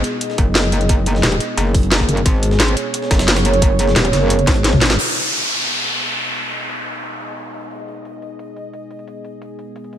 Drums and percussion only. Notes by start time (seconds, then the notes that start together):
0.04 closed hi-hat
0.21 closed hi-hat
0.30 snare
0.38 kick, closed hi-hat
0.55 snare, closed hi-hat
0.64 snare
0.72 closed hi-hat
0.81 closed hi-hat
0.89 kick, closed hi-hat
1.06 closed hi-hat
1.15 snare
1.23 snare, closed hi-hat
1.32 snare, closed hi-hat
1.40 closed hi-hat
1.58 closed hi-hat
1.75 kick, closed hi-hat, open hi-hat
1.83 closed hi-hat
1.92 snare, closed hi-hat
2.00 kick, snare
2.09 closed hi-hat
2.17 closed hi-hat
2.26 kick, closed hi-hat
2.43 closed hi-hat
2.51 snare
2.60 snare, closed hi-hat
2.68 snare, closed hi-hat
2.77 closed hi-hat
2.94 closed hi-hat
3.02 snare
3.11 kick, snare, closed hi-hat
3.19 snare, closed hi-hat
3.28 snare, closed hi-hat
3.36 snare, closed hi-hat
3.45 closed hi-hat
3.54 closed hi-hat
3.62 kick, closed hi-hat
3.79 closed hi-hat
3.88 snare
3.96 snare, closed hi-hat
4.05 snare, closed hi-hat
4.13 snare, closed hi-hat
4.30 closed hi-hat
4.39 closed hi-hat
4.47 kick, snare, closed hi-hat, open hi-hat
4.56 closed hi-hat
4.64 snare, closed hi-hat
4.73 kick, mid tom
4.81 snare, closed hi-hat
4.86 snare, closed hi-hat
4.90 snare, closed hi-hat
4.99 closed hi-hat, crash
5.16 closed hi-hat
5.33 closed hi-hat
5.50 closed hi-hat
5.67 closed hi-hat
5.84 closed hi-hat
6.01 closed hi-hat
6.18 closed hi-hat
6.26 closed hi-hat
6.35 closed hi-hat
6.52 closed hi-hat
6.69 closed hi-hat
6.86 closed hi-hat
7.03 closed hi-hat
7.20 closed hi-hat
7.37 closed hi-hat
7.54 closed hi-hat
7.63 closed hi-hat
7.71 closed hi-hat
7.88 closed hi-hat
8.05 closed hi-hat
8.22 closed hi-hat
8.39 closed hi-hat
8.56 closed hi-hat
8.73 closed hi-hat
8.91 closed hi-hat
8.99 closed hi-hat
9.08 closed hi-hat
9.25 closed hi-hat
9.42 closed hi-hat
9.59 closed hi-hat
9.76 closed hi-hat
9.84 closed hi-hat
9.93 closed hi-hat